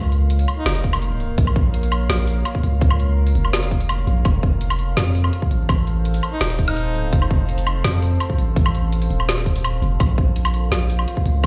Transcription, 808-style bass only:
0.00 0.46 C#2 loud
0.66 1.36 F1 medium
1.38 2.08 A#1 loud
2.09 2.44 A#1 loud
2.64 3.34 C#2 loud
3.35 4.06 F1 loud
4.07 4.24 A#1 loud
4.25 4.96 F1 loud
4.97 5.32 F2 loud
5.51 6.21 A1 loud
6.41 6.91 D#1 loud
6.91 7.11 D1 loud
7.13 7.83 F1 loud
7.84 8.19 F2 loud
8.38 9.09 A1 loud
9.10 9.81 D#1 loud
9.82 9.99 F1 loud
10.00 10.70 A#1 loud
10.72 11.06 A#1 loud
11.26 11.46 C#2 loud

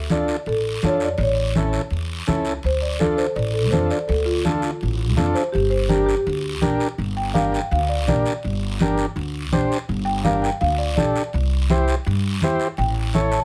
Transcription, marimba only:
0.00 0.12 E5 loud
0.12 0.49 D5 loud
0.47 0.81 A4 medium
0.86 0.93 C#5 medium
1.04 1.12 D5 medium
1.23 1.72 C#5 medium
2.66 2.83 C5 medium
2.82 3.00 D5 medium
2.99 3.18 A4 medium
3.17 3.36 C5 medium
3.36 3.54 D5 medium
3.54 3.72 A4 medium
3.71 3.90 C5 medium
3.90 4.08 D5 medium
4.08 4.26 A4 medium
4.25 4.97 F4 medium
5.34 5.53 C5 medium
5.52 5.71 G4 medium
5.70 5.89 C5 medium
5.89 6.05 G4 medium
6.06 6.78 G4 medium
7.17 7.35 G5 medium
7.34 7.52 F5 medium
7.53 7.71 G5 medium
7.72 7.89 F5 medium
7.89 8.07 D5 medium
8.08 9.13 D5 medium
10.05 10.24 G5 loud
10.24 10.42 F5 medium
10.42 10.60 G5 medium
10.61 10.78 F5 medium
10.78 10.95 D5 medium
10.96 12.02 D5 medium
12.78 13.31 G5 loud
13.31 13.44 A5 medium

